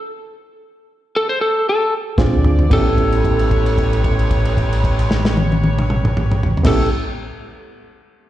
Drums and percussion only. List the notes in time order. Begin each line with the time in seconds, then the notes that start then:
2.18 kick, snare
2.44 mid tom
2.59 floor tom
2.71 kick, crash
2.98 kick, crash
3.12 crash
3.24 kick, crash
3.39 crash
3.51 kick, crash
3.66 crash
3.78 kick, crash
3.93 crash
4.04 kick, crash
4.19 crash
4.31 kick, crash
4.45 crash
4.57 kick, crash
4.73 crash
4.84 kick, crash
4.99 crash
5.11 snare
5.25 snare
5.37 high tom
5.52 high tom
5.64 high tom
5.79 mid tom
5.90 mid tom
6.05 mid tom
6.17 mid tom
6.32 mid tom
6.43 floor tom
6.57 floor tom
6.65 kick, snare, crash